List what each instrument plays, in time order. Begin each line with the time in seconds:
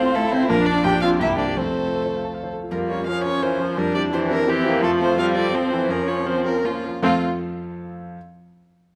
Already playing: grand piano A1 A2 A3 F4 A4 C5 F5, viola C4, violin F4 C5
0.00 cello C4
0.06 grand piano C6
0.15 cello A3, violin E4 A4, grand piano F5
0.23 grand piano A4
0.32 cello C4, violin C5, grand piano C5
0.42 grand piano F4
0.49 grand piano A#1, cello A#3, violin D4 A#4, viola D4
0.59 grand piano F2
0.66 grand piano D4, cello D4, violin D5
0.76 grand piano F4
0.84 grand piano A#1, violin D4 G5, viola D4, cello G4
0.93 grand piano A#2
1.01 viola C4, grand piano D4, cello F4, violin F5
1.12 grand piano G4
1.20 grand piano C2, viola A#3, cello E4, violin G4 E5
1.29 grand piano G2
1.39 grand piano C4, cello D4, violin D5
1.48 grand piano G4
1.57 grand piano F2, viola A3, cello C4, violin A4 C5
1.67 grand piano C3
1.77 grand piano C4
1.86 grand piano F4
1.96 grand piano A4
2.06 grand piano C5
2.16 grand piano F5
2.25 grand piano A5
2.34 grand piano F5
2.43 grand piano C5
2.53 grand piano A4
2.62 grand piano F4
2.71 grand piano F2, viola G3, violin A#3 A#4, cello F4
2.90 grand piano C#4 F4 A#4, violin C#5
3.07 viola F3, grand piano C#4 F4 A#4, cello C#4, violin C#4 F5
3.24 grand piano C#4 F4 A#4, violin C#5
3.42 viola E3, grand piano C#4 F4 A#4, violin C#4 C5
3.60 viola F3, grand piano C#4 F4 A#4
3.78 grand piano F2, viola G3, violin D4 A#4, cello D4
3.95 grand piano C4 E4 G4, violin D5
4.13 viola E3, grand piano C4 E4 G4, violin C4 C5
4.29 grand piano C4 E4 G4, violin A#4
4.47 viola E3, grand piano C4 E4 G4, cello C4, violin C4 G4
4.64 violin A#3, grand piano C4 E4 G4
4.82 grand piano F2, viola F3, violin A3 A4, cello F4
5.00 grand piano C4 F4 A4, violin C5
5.17 viola G3, grand piano C4 F4 A4, violin C4 F5
5.36 grand piano C4 F4 A4, violin D5
5.53 viola F3, grand piano C4 F4 A4, cello C4, violin C5
5.70 viola E3, grand piano C4 F4 A4
5.89 grand piano F2, viola F3, cello C#4, violin C#4 A#4
6.07 grand piano C#4 F4 A#4, violin C#5
6.26 cello C4, violin C4 C5, grand piano C#4 F4 A#4
6.45 grand piano C#4 F4 A#4, violin A#4
6.64 viola F3, cello A#3, violin A#3 F4, grand piano C#4 F4 A#4
6.84 grand piano C#4 F4 A#4
7.02 grand piano F2 F3 C4 F4 A4 F5, cello A3, viola C4, violin F4